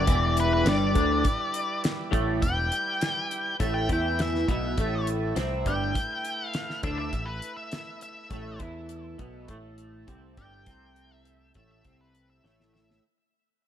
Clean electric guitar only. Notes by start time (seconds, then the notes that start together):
0.06 E2 E3
0.65 G2 G3
0.95 D3 D4
2.11 A2 A3
2.42 E2
3.60 A2 A3
3.89 E3 E4
4.48 B2 B3
4.78 A2 A3
5.36 C3 C4
5.66 G2 G3
6.84 D3 D4
7.13 A2
8.31 A2 A3
8.60 E3 E4
9.18 B2 B3
9.48 A2 A3
10.07 C3 C4
10.38 G2 G3
10.67 C3 C4
11.55 A2 A3
11.84 C3 C4
12.44 A2 A3